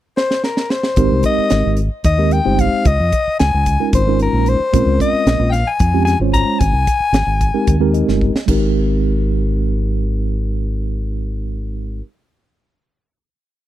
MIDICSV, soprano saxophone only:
0, 0, Header, 1, 2, 480
1, 0, Start_track
1, 0, Key_signature, -4, "major"
1, 0, Tempo, 537153
1, 871, Time_signature, 7, 3, 24, 8
1, 12216, End_track
2, 0, Start_track
2, 0, Title_t, "Soprano saxophone"
2, 0, Program_c, 0, 64
2, 153, Note_on_c, 0, 72, 81
2, 375, Note_off_c, 0, 72, 0
2, 396, Note_on_c, 0, 70, 66
2, 629, Note_on_c, 0, 72, 78
2, 642, Note_off_c, 0, 70, 0
2, 1111, Note_off_c, 0, 72, 0
2, 1124, Note_on_c, 0, 75, 91
2, 1565, Note_off_c, 0, 75, 0
2, 1836, Note_on_c, 0, 75, 76
2, 2081, Note_on_c, 0, 79, 76
2, 2094, Note_off_c, 0, 75, 0
2, 2331, Note_on_c, 0, 77, 84
2, 2345, Note_off_c, 0, 79, 0
2, 2566, Note_on_c, 0, 75, 87
2, 2579, Note_off_c, 0, 77, 0
2, 3030, Note_off_c, 0, 75, 0
2, 3036, Note_on_c, 0, 80, 86
2, 3480, Note_off_c, 0, 80, 0
2, 3529, Note_on_c, 0, 72, 80
2, 3744, Note_off_c, 0, 72, 0
2, 3777, Note_on_c, 0, 70, 78
2, 4012, Note_on_c, 0, 72, 90
2, 4025, Note_off_c, 0, 70, 0
2, 4477, Note_off_c, 0, 72, 0
2, 4482, Note_on_c, 0, 75, 87
2, 4894, Note_off_c, 0, 75, 0
2, 4913, Note_on_c, 0, 79, 71
2, 4933, Note_on_c, 0, 77, 77
2, 4946, Note_off_c, 0, 79, 0
2, 5069, Note_on_c, 0, 80, 92
2, 5082, Note_off_c, 0, 77, 0
2, 5401, Note_off_c, 0, 80, 0
2, 5407, Note_on_c, 0, 80, 93
2, 5519, Note_off_c, 0, 80, 0
2, 5660, Note_on_c, 0, 82, 97
2, 5892, Note_on_c, 0, 80, 101
2, 5905, Note_off_c, 0, 82, 0
2, 7096, Note_off_c, 0, 80, 0
2, 12216, End_track
0, 0, End_of_file